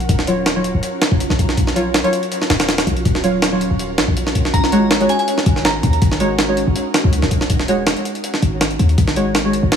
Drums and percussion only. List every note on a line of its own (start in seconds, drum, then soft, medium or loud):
0.00 closed hi-hat soft
0.09 kick loud
0.09 closed hi-hat medium
0.19 snare medium
0.27 closed hi-hat medium
0.46 snare loud
0.46 closed hi-hat medium
0.64 closed hi-hat medium
0.83 closed hi-hat medium
1.02 snare loud
1.02 closed hi-hat medium
1.11 kick loud
1.20 closed hi-hat medium
1.30 snare medium
1.39 kick loud
1.39 closed hi-hat medium
1.49 snare soft
1.57 kick loud
1.57 closed hi-hat medium
1.67 snare soft
1.76 closed hi-hat medium
1.94 snare loud
1.94 closed hi-hat medium
2.04 closed hi-hat soft
2.13 closed hi-hat medium
2.23 closed hi-hat soft
2.32 closed hi-hat medium
2.42 snare medium
2.50 snare loud
2.50 closed hi-hat medium
2.60 snare loud
2.60 closed hi-hat medium
2.69 snare loud
2.69 closed hi-hat medium
2.78 snare loud
2.78 closed hi-hat medium
2.87 kick loud
2.87 closed hi-hat medium
2.97 closed hi-hat soft
3.05 kick loud
3.05 closed hi-hat medium
3.15 snare soft
3.24 closed hi-hat medium
3.42 snare loud
3.42 closed hi-hat medium
3.61 closed hi-hat medium
3.79 closed hi-hat medium
3.98 snare loud
3.98 closed hi-hat medium
4.08 kick loud
4.17 closed hi-hat medium
4.27 snare medium
4.35 kick loud
4.35 closed hi-hat medium
4.45 snare medium
4.54 kick loud
4.54 closed hi-hat medium
4.64 snare soft
4.72 closed hi-hat medium
4.91 snare loud
4.91 closed hi-hat medium
5.00 closed hi-hat soft
5.09 closed hi-hat medium
5.19 closed hi-hat soft
5.28 closed hi-hat medium
5.38 snare medium
5.46 kick medium
5.46 closed hi-hat medium
5.56 snare soft
5.65 snare loud
5.65 closed hi-hat medium
5.83 kick medium
5.83 closed hi-hat medium
5.93 closed hi-hat soft
6.02 kick loud
6.02 closed hi-hat medium
6.12 snare medium
6.20 closed hi-hat medium
6.39 snare loud
6.39 closed hi-hat medium
6.57 closed hi-hat medium
6.76 closed hi-hat medium
6.94 snare loud
6.94 closed hi-hat medium
7.04 kick medium
7.13 closed hi-hat medium
7.22 snare medium
7.31 kick loud
7.31 closed hi-hat medium
7.41 snare medium
7.50 kick loud
7.50 closed hi-hat medium
7.60 snare soft
7.68 closed hi-hat medium
7.87 snare loud
7.87 closed hi-hat medium
7.97 closed hi-hat soft
8.05 closed hi-hat medium
8.15 closed hi-hat soft
8.24 closed hi-hat medium
8.34 snare medium
8.42 closed hi-hat medium
8.61 snare loud
8.61 closed hi-hat medium
8.71 closed hi-hat soft
8.79 closed hi-hat medium
8.89 closed hi-hat soft
8.98 kick loud
8.98 closed hi-hat medium
9.08 snare medium
9.16 closed hi-hat medium
9.35 snare loud
9.35 closed hi-hat medium
9.53 closed hi-hat medium
9.72 snare loud
9.72 closed hi-hat medium